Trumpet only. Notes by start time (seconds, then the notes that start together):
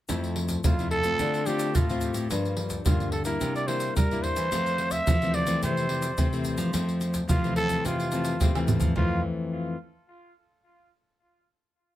0.65 F4
0.91 A4
1.46 G4
1.76 F4
2.86 F4
3.12 A4
3.25 A#4
3.55 D5
3.67 C5
3.96 A#4
4.23 C5
4.92 E5
5.34 D5
5.64 C5
7.29 F4
7.56 A4
7.86 F4
8.97 F4